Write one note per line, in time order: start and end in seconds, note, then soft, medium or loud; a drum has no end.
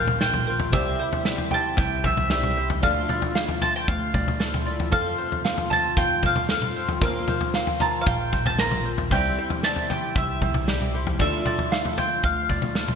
0.00 0.70 A#1 medium
0.00 0.73 A#1 loud
0.00 0.70 A#2 medium
0.00 0.21 A#3 soft
0.00 0.69 A#3 medium
0.00 0.22 C4 soft
0.00 0.70 C4 medium
0.00 0.21 F4 medium
0.00 0.70 F4 medium
0.00 0.46 A#4 medium
0.00 0.71 C5 medium
0.00 0.73 C5 medium
0.00 0.21 F5 medium
0.00 0.48 F5 medium
0.08 floor tom medium
0.08 mid tom medium
0.20 0.47 F3 medium
0.20 0.48 A#3 medium
0.20 0.47 C4 medium
0.20 0.72 F4 medium
0.20 0.46 F4 medium
0.20 0.58 G5 medium
0.20 snare medium
0.34 floor tom medium
0.34 mid tom medium
0.47 0.74 A#3 soft
0.47 0.73 C4 soft
0.47 0.73 F4 medium
0.47 0.73 A#4 medium
0.60 floor tom medium
0.72 0.94 C2 medium
0.72 2.80 C2 medium
0.72 1.00 C3 medium
0.72 2.80 C3 medium
0.72 2.27 G3 medium
0.72 1.00 G3 medium
0.72 2.28 C4 medium
0.72 1.00 C4 medium
0.72 2.28 E4 medium
0.72 1.01 E4 medium
0.72 1.78 G4 medium
0.72 0.99 G4 medium
0.72 2.29 C5 medium
0.72 1.22 E5 medium
0.72 kick medium
0.72 floor tom medium
0.99 1.26 E4 soft
0.99 1.26 G4 medium
0.99 2.03 C5 medium
1.03 1.25 C4 soft
1.13 floor tom medium
1.25 1.52 G3 medium
1.25 1.53 C4 medium
1.25 1.52 E4 medium
1.25 1.50 G4 medium
1.25 1.76 E5 medium
1.25 snare medium
1.38 floor tom medium
1.51 2.31 C4 soft
1.51 2.31 E4 soft
1.51 2.31 G4 medium
1.51 2.57 G5 medium
1.51 1.78 A5 medium
1.51 floor tom medium
1.77 2.83 C2 medium
1.77 2.83 E5 medium
1.77 2.05 G5 medium
1.77 kick loud
1.77 floor tom medium
2.04 2.56 C5 medium
2.04 2.30 E5 medium
2.04 kick medium
2.04 floor tom medium
2.04 mid tom medium
2.17 floor tom medium
2.17 mid tom medium
2.30 2.83 G3 soft
2.30 2.57 G3 medium
2.30 2.83 C4 soft
2.30 2.58 C4 medium
2.30 2.83 E4 soft
2.30 2.57 E4 medium
2.30 2.83 G4 medium
2.30 2.56 G4 medium
2.30 2.84 C5 soft
2.30 2.68 E5 medium
2.30 snare medium
2.43 mid tom medium
2.57 2.83 C4 soft
2.57 2.83 E4 soft
2.57 2.83 G4 soft
2.57 2.83 C5 medium
2.70 floor tom medium
2.82 3.04 D2 loud
2.82 4.89 D2 medium
2.82 3.09 D3 medium
2.82 4.89 D3 medium
2.82 4.88 F3 medium
2.82 3.10 F3 medium
2.82 3.10 A3 medium
2.82 4.89 D4 medium
2.82 3.09 E4 medium
2.82 3.88 F4 medium
2.82 3.08 F4 medium
2.82 4.90 A4 medium
2.82 3.32 F5 medium
2.82 kick medium
2.82 floor tom medium
2.86 4.90 F5 medium
3.09 3.35 A3 soft
3.09 3.36 E4 soft
3.09 3.36 F4 soft
3.09 4.13 D5 medium
3.09 floor tom medium
3.09 mid tom medium
3.22 floor tom medium
3.35 3.62 F3 medium
3.35 3.62 A3 medium
3.35 3.63 E4 medium
3.35 3.60 F4 medium
3.35 4.40 F5 medium
3.35 snare medium
3.49 floor tom medium
3.61 4.40 A3 soft
3.61 4.43 F4 medium
3.61 3.75 A5 loud
3.61 floor tom medium
3.76 3.88 G5 medium
3.88 4.93 D2 medium
3.88 4.63 F5 medium
3.88 kick loud
3.88 floor tom medium
4.14 4.65 D5 medium
4.14 kick medium
4.14 floor tom medium
4.14 mid tom medium
4.28 floor tom medium
4.28 mid tom medium
4.40 4.67 F3 medium
4.40 4.67 A3 soft
4.40 4.66 E4 medium
4.40 4.93 F4 medium
4.40 4.64 F4 medium
4.40 snare medium
4.54 floor tom medium
4.54 mid tom medium
4.65 4.93 A3 soft
4.65 4.93 E4 medium
4.65 4.92 F4 medium
4.65 4.91 D5 medium
4.80 floor tom medium
4.91 6.98 F1 medium
4.91 5.19 F2 medium
4.91 6.98 F2 medium
4.91 5.14 F2 medium
4.91 5.19 C3 medium
4.91 6.97 F3 medium
4.91 5.19 F3 medium
4.91 5.19 A3 medium
4.91 6.98 C4 medium
4.91 5.18 C4 medium
4.91 5.16 F4 medium
4.91 5.70 A4 medium
4.91 6.99 A4 medium
4.91 6.99 C5 medium
4.91 5.41 F5 medium
4.91 kick loud
4.91 floor tom medium
5.18 5.43 F3 soft
5.18 5.44 A3 soft
5.18 5.45 C4 soft
5.18 5.45 F4 soft
5.18 6.22 C5 medium
5.32 floor tom medium
5.44 5.71 F3 medium
5.44 5.72 A3 medium
5.44 5.71 C4 medium
5.44 5.70 F4 medium
5.44 5.95 F5 medium
5.44 snare medium
5.58 floor tom medium
5.70 6.48 F3 soft
5.70 6.49 A3 soft
5.70 6.51 C4 medium
5.70 6.50 F4 medium
5.70 6.75 A5 medium
5.70 5.97 A5 medium
5.70 floor tom medium
5.97 7.01 F2 medium
5.97 7.02 F5 medium
5.97 6.25 G5 loud
5.97 kick loud
5.97 floor tom medium
6.23 6.75 C5 medium
6.23 6.49 F5 medium
6.23 kick medium
6.23 floor tom medium
6.23 mid tom medium
6.36 floor tom medium
6.36 mid tom medium
6.49 6.76 F3 medium
6.49 6.77 A3 medium
6.49 6.76 C4 medium
6.49 6.74 F4 medium
6.49 7.01 A4 medium
6.49 6.86 F5 medium
6.49 snare medium
6.62 mid tom medium
6.75 7.02 F3 soft
6.75 7.03 A3 soft
6.75 7.03 C4 medium
6.75 7.02 F4 soft
6.75 7.02 C5 medium
6.88 floor tom medium
7.00 7.23 A#1 medium
7.00 9.07 A#1 medium
7.00 9.07 A#2 medium
7.00 7.29 A#2 medium
7.00 9.06 F3 medium
7.00 7.29 F3 medium
7.00 7.29 A#3 medium
7.00 9.07 C4 medium
7.00 7.28 C4 medium
7.00 8.07 A#4 medium
7.00 9.07 A#4 medium
7.00 9.08 C5 medium
7.00 7.51 F5 medium
7.00 kick loud
7.00 floor tom medium
7.05 7.27 F4 medium
7.28 7.54 A#3 soft
7.28 7.55 C4 soft
7.28 7.54 F4 medium
7.28 8.32 C5 medium
7.28 floor tom medium
7.28 mid tom medium
7.41 floor tom medium
7.54 7.81 F3 medium
7.54 7.81 A#3 medium
7.54 7.81 C4 medium
7.54 7.80 F4 medium
7.54 8.06 F5 medium
7.54 snare medium
7.67 floor tom medium
7.80 8.60 C4 soft
7.80 8.59 F4 soft
7.80 8.01 A5 medium
7.80 8.85 A#5 medium
7.80 floor tom medium
7.84 8.60 A#3 soft
8.01 8.06 F5 medium
8.06 9.11 A#1 loud
8.06 9.11 F5 medium
8.06 8.46 G5 medium
8.06 kick loud
8.06 floor tom medium
8.33 8.84 C5 medium
8.33 kick medium
8.33 floor tom medium
8.33 mid tom medium
8.46 8.58 A5 loud
8.46 floor tom medium
8.46 mid tom medium
8.58 8.85 F3 medium
8.58 8.86 A#3 medium
8.58 8.86 C4 medium
8.58 9.11 A#4 medium
8.58 8.96 A#5 medium
8.58 snare medium
8.63 8.84 F4 medium
8.71 floor tom medium
8.71 mid tom medium
8.85 9.12 A#3 soft
8.85 9.11 C4 soft
8.85 9.11 F4 soft
8.85 9.11 C5 medium
8.98 floor tom medium
9.11 9.32 C2 loud
9.11 11.16 C2 medium
9.11 9.37 C3 medium
9.11 11.16 C3 medium
9.11 11.16 G3 medium
9.11 9.38 G3 medium
9.11 9.38 C4 medium
9.11 11.16 E4 medium
9.11 9.38 E4 medium
9.11 10.16 G4 medium
9.11 9.36 G4 medium
9.11 11.17 C5 medium
9.11 11.17 E5 medium
9.11 9.64 G5 medium
9.11 kick loud
9.11 floor tom medium
9.37 9.63 C4 soft
9.37 9.64 E4 soft
9.37 9.63 G4 soft
9.37 10.41 C5 medium
9.50 floor tom medium
9.63 9.89 G3 medium
9.63 9.90 C4 medium
9.63 9.89 E4 medium
9.63 9.88 G4 medium
9.63 10.15 E5 medium
9.63 9.91 A5 medium
9.63 snare medium
9.76 floor tom medium
9.89 10.66 C4 soft
9.89 10.67 E4 soft
9.89 10.67 G4 soft
9.89 10.94 G5 medium
9.89 10.17 G5 medium
9.89 floor tom medium
10.15 11.20 C2 medium
10.15 11.20 E5 medium
10.15 10.91 E5 medium
10.15 kick loud
10.15 floor tom medium
10.42 10.93 C5 medium
10.42 kick medium
10.42 floor tom medium
10.42 mid tom medium
10.54 floor tom medium
10.54 mid tom medium
10.66 10.93 G3 medium
10.66 10.94 C4 medium
10.66 10.93 E4 medium
10.66 11.20 G4 medium
10.66 10.91 G4 medium
10.66 snare medium
10.81 mid tom medium
10.92 11.20 C4 soft
10.92 11.20 E4 soft
10.92 11.19 G4 medium
10.92 11.20 C5 medium
11.07 floor tom medium
11.19 11.40 D2 medium
11.19 12.95 D2 medium
11.19 11.46 D3 medium
11.19 12.95 D3 medium
11.19 12.95 F3 medium
11.19 11.46 F3 medium
11.19 11.46 A3 medium
11.19 12.95 D4 medium
11.19 11.46 E4 medium
11.19 12.24 F4 medium
11.19 11.44 F4 medium
11.19 12.95 A4 medium
11.19 12.95 D5 medium
11.19 12.01 E5 medium
11.19 kick loud
11.19 floor tom medium
11.45 11.71 A3 soft
11.45 11.71 E4 soft
11.45 11.71 F4 soft
11.45 12.49 D5 medium
11.45 floor tom medium
11.45 mid tom medium
11.59 floor tom medium
11.71 11.97 F3 medium
11.71 11.98 A3 medium
11.71 11.98 E4 medium
11.71 11.97 F4 medium
11.71 12.76 F5 medium
11.71 snare medium
11.85 floor tom medium
11.98 12.75 A3 soft
11.98 12.76 F4 soft
11.98 12.24 G5 medium
11.98 floor tom medium
12.23 12.95 D2 loud
12.23 12.95 F5 medium
12.23 kick loud
12.23 floor tom medium
12.49 12.95 D5 medium
12.49 kick medium
12.49 floor tom medium
12.49 mid tom medium
12.62 floor tom medium
12.62 mid tom medium
12.75 12.95 F3 medium
12.75 12.95 A3 medium
12.75 12.95 E4 medium
12.75 12.95 F4 medium
12.75 snare medium
12.88 floor tom medium
12.88 mid tom medium